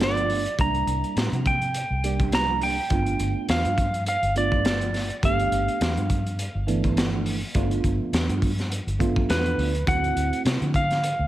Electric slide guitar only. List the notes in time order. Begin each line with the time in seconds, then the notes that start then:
0.03 D5
0.61 A#5
1.47 G5
2.35 A#5
2.63 G5
3.50 F5
4.08 F5
4.38 D5
5.25 F5
9.30 B4
9.88 F#5
10.76 F5